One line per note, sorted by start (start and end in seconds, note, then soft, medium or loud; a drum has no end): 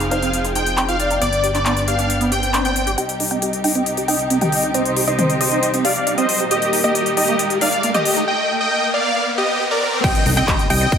0.00 1.19 F1 medium
0.00 1.20 F3 medium
0.00 1.18 C4 medium
0.00 1.18 D#4 medium
0.00 1.20 G#4 medium
0.00 2.95 G5 medium
0.00 closed hi-hat medium
0.11 0.19 D#4 medium
0.11 0.91 C5 medium
0.11 0.45 F5 loud
0.11 closed hi-hat medium
0.23 0.30 C4 medium
0.23 closed hi-hat medium
0.33 closed hi-hat medium
0.45 0.52 F4 medium
0.45 closed hi-hat medium
0.55 0.63 D#4 medium
0.55 0.80 G5 medium
0.55 closed hi-hat medium
0.66 closed hi-hat soft
0.78 0.85 C4 medium
0.78 clap loud
0.78 closed hi-hat medium
0.88 0.96 F4 loud
0.88 1.13 F5 loud
0.88 closed hi-hat soft
0.99 1.57 D5 medium
0.99 closed hi-hat medium
1.11 1.18 D#4 medium
1.11 closed hi-hat soft
1.22 2.96 G1 medium
1.22 1.29 B3 loud
1.22 2.96 B3 medium
1.22 2.97 D4 medium
1.22 1.47 D5 loud
1.22 closed hi-hat medium
1.33 closed hi-hat medium
1.44 1.51 G4 medium
1.44 closed hi-hat medium
1.55 1.59 D4 medium
1.55 1.80 D5 medium
1.55 clap soft
1.55 closed hi-hat soft
1.66 1.73 B3 medium
1.66 2.89 D5 medium
1.66 clap loud
1.66 closed hi-hat medium
1.77 closed hi-hat medium
1.88 1.95 G4 medium
1.88 2.21 F5 medium
1.88 closed hi-hat medium
1.99 2.06 D4 medium
1.99 closed hi-hat medium
2.10 closed hi-hat medium
2.10 swell medium
2.21 2.31 B3 medium
2.21 closed hi-hat soft
2.32 2.40 G4 medium
2.32 2.57 G5 medium
2.32 closed hi-hat medium
2.43 closed hi-hat medium
2.54 2.62 D4 medium
2.54 clap loud
2.54 closed hi-hat medium
2.65 2.73 B3 medium
2.65 2.90 G5 medium
2.65 closed hi-hat soft
2.76 closed hi-hat medium
2.87 2.92 G4 medium
2.87 closed hi-hat medium
2.98 6.48 C2 medium
2.98 6.47 C3 medium
2.98 6.47 G3 medium
2.98 8.23 D#4 medium
2.98 3.06 G4 medium
2.98 6.47 G4 medium
2.98 3.23 D#5 medium
2.98 3.23 G5 loud
2.98 closed hi-hat medium
2.98 riser medium
3.09 closed hi-hat medium
3.20 3.28 D#4 medium
3.20 open hi-hat medium
3.31 3.39 C4 medium
3.31 3.56 D#5 medium
3.31 3.56 G5 medium
3.31 closed hi-hat medium
3.42 3.50 G4 medium
3.42 closed hi-hat medium
3.53 closed hi-hat medium
3.64 3.72 D#4 medium
3.64 3.98 D#5 medium
3.64 3.97 G5 medium
3.64 3.98 G5 medium
3.64 open hi-hat loud
3.75 3.83 C4 medium
3.75 closed hi-hat medium
3.86 closed hi-hat medium
3.97 4.05 G4 medium
3.97 closed hi-hat soft
4.08 4.16 D#4 medium
4.08 4.33 D#5 medium
4.08 4.33 G5 medium
4.08 open hi-hat loud
4.19 closed hi-hat medium
4.30 4.38 C4 medium
4.30 closed hi-hat medium
4.41 4.49 G4 loud
4.41 4.66 D#5 medium
4.41 4.66 G5 loud
4.41 4.66 G5 medium
4.41 closed hi-hat medium
4.41 mid tom medium
4.52 open hi-hat loud
4.63 4.71 D#4 medium
4.63 closed hi-hat medium
4.74 4.82 C4 loud
4.74 4.99 C5 medium
4.74 4.99 D#5 loud
4.74 closed hi-hat medium
4.86 closed hi-hat soft
4.97 5.04 G4 medium
4.97 open hi-hat loud
5.08 5.12 D#4 medium
5.08 5.33 C5 medium
5.08 5.33 D#5 medium
5.08 5.33 D#5 loud
5.08 closed hi-hat medium
5.19 5.26 C4 medium
5.19 closed hi-hat medium
5.19 mid tom medium
5.30 closed hi-hat medium
5.41 5.48 G4 loud
5.41 5.74 C5 medium
5.41 5.74 D#5 loud
5.41 5.74 D#5 medium
5.41 open hi-hat loud
5.52 5.59 D#4 medium
5.52 closed hi-hat medium
5.63 closed hi-hat medium
5.74 5.84 C4 medium
5.74 closed hi-hat soft
5.85 5.92 G4 medium
5.85 6.10 D5 medium
5.85 6.10 F5 medium
5.85 open hi-hat loud
5.96 closed hi-hat medium
6.07 6.15 D#4 medium
6.07 closed hi-hat medium
6.18 6.26 C4 medium
6.18 6.43 C5 medium
6.18 6.43 D#5 medium
6.18 6.43 D#5 loud
6.18 closed hi-hat medium
6.29 open hi-hat loud
6.40 6.45 G4 medium
6.40 closed hi-hat medium
6.51 8.26 D#2 medium
6.51 8.26 A#2 medium
6.51 8.26 G3 medium
6.51 6.59 G4 medium
6.51 6.76 G4 medium
6.51 8.26 A#4 medium
6.51 6.76 D#5 loud
6.51 closed hi-hat medium
6.62 closed hi-hat soft
6.73 6.81 D#4 medium
6.73 open hi-hat loud
6.84 6.92 A#3 medium
6.84 7.09 G4 medium
6.84 7.09 D#5 medium
6.84 7.09 D#5 loud
6.84 closed hi-hat soft
6.95 7.03 G4 medium
6.95 closed hi-hat medium
7.06 closed hi-hat medium
7.17 7.25 D#4 medium
7.17 7.50 G4 medium
7.17 7.50 D#5 loud
7.17 open hi-hat loud
7.28 7.36 A#3 medium
7.28 closed hi-hat medium
7.39 closed hi-hat medium
7.50 7.58 G4 medium
7.50 closed hi-hat medium
7.61 7.69 D#4 medium
7.61 7.86 D5 medium
7.61 7.86 F5 medium
7.61 7.86 F5 loud
7.61 open hi-hat loud
7.72 closed hi-hat medium
7.83 7.91 A#3 medium
7.83 closed hi-hat medium
7.94 8.19 G4 medium
7.94 8.02 G4 loud
7.94 8.19 D#5 medium
7.94 closed hi-hat soft
7.94 mid tom medium
8.05 open hi-hat loud
8.17 8.24 D#4 medium
8.17 closed hi-hat soft
8.28 8.52 D#5 medium
8.28 8.52 G5 loud
8.61 8.86 D#5 medium
8.61 8.86 G5 medium
8.94 9.27 D5 medium
8.94 9.27 F5 loud
9.38 9.63 G4 medium
9.38 9.63 D#5 medium
9.71 9.96 A#4 medium
9.71 9.96 D5 medium
10.04 10.98 G3 medium
10.04 10.98 C4 medium
10.04 10.98 D#4 medium
10.04 10.12 G4 medium
10.04 10.29 D#5 medium
10.04 10.29 G5 loud
10.04 kick loud
10.04 closed hi-hat medium
10.04 crash loud
10.04 impact medium
10.15 closed hi-hat medium
10.26 10.42 C2 loud
10.26 10.34 D#4 medium
10.26 open hi-hat loud
10.37 10.45 C4 medium
10.37 10.62 D#5 medium
10.37 10.62 G5 loud
10.37 10.62 G5 medium
10.37 closed hi-hat medium
10.48 10.56 G4 medium
10.48 kick loud
10.48 clap loud
10.48 closed hi-hat medium
10.59 closed hi-hat medium
10.70 10.87 C2 loud
10.70 10.78 D#4 medium
10.70 10.98 D#5 medium
10.70 10.98 G5 loud
10.70 open hi-hat loud
10.81 10.89 C4 medium
10.81 closed hi-hat medium
10.92 kick loud
10.92 closed hi-hat medium